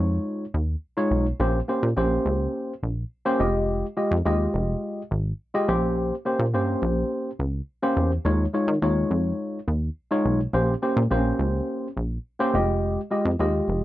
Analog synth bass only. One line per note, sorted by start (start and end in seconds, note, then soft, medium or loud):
0.00 0.19 F2 loud
0.54 0.76 D#2 medium
1.11 1.33 B1 medium
1.40 1.62 A#1 loud
1.83 1.94 A#2 loud
1.97 2.19 A#1 loud
2.26 2.48 C#2 loud
2.83 3.05 A#1 medium
3.40 3.84 F1 loud
4.11 4.22 F2 loud
4.26 4.48 D#2 loud
4.54 4.76 F1 loud
5.11 5.33 G#1 medium
5.68 6.12 A#1 medium
6.39 6.55 A#2 medium
6.54 6.76 G2 medium
6.82 7.04 A#1 loud
7.39 7.61 C#2 medium
7.96 8.19 E2 medium
8.25 8.47 D#2 loud
8.68 8.79 D#3 medium
8.82 9.04 D#2 loud
9.11 9.33 F2 medium
9.68 9.90 D#2 medium
10.25 10.47 B1 medium
10.53 10.76 A#1 loud
10.97 11.08 A#2 loud
11.11 11.33 A#1 loud
11.39 11.61 C#2 loud
11.97 12.19 A#1 medium
12.54 12.98 F1 loud
13.25 13.36 F2 loud
13.39 13.62 D#2 medium
13.68 13.84 F1 medium